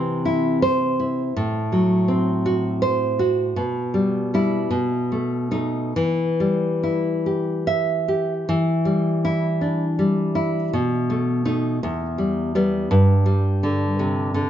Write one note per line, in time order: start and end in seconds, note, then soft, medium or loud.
0.00 1.31 C3 medium
0.00 0.62 E3 soft
0.00 0.99 C4 medium
0.25 0.62 E4 medium
0.62 1.21 C5 medium
1.00 1.36 E4 soft
1.36 3.53 A2 medium
1.72 2.82 F#3 soft
2.08 3.18 C4 medium
2.46 3.18 F#4 medium
2.82 3.41 C5 medium
3.19 3.57 F#4 medium
3.56 4.69 B2 medium
3.94 4.33 G3 medium
4.34 4.69 G3 soft
4.34 4.69 E4 medium
4.71 5.92 B2 medium
5.12 5.50 A3 soft
5.51 5.92 A3 soft
5.51 5.92 D#4 medium
5.96 8.44 E3 medium
6.40 7.67 G3 soft
6.83 7.67 E4 soft
7.26 8.07 G4 soft
7.67 8.33 E5 medium
8.08 8.48 G4 soft
8.49 10.70 E3 medium
8.85 9.98 G3 soft
9.25 9.84 E4 medium
9.61 10.74 D4 soft
9.99 10.74 G3 soft
10.35 10.73 E4 soft
10.73 11.79 B2 medium
11.10 11.44 A3 soft
11.45 11.78 A3 soft
11.45 11.78 D#4 medium
11.83 12.89 E2 medium
12.18 12.54 G3 medium
12.55 12.88 G3 soft
12.55 12.89 B3 medium
12.91 14.50 G2 medium
13.26 13.85 G3 medium
13.63 14.33 D3 medium
13.99 14.50 C3 soft
14.34 14.50 D3 medium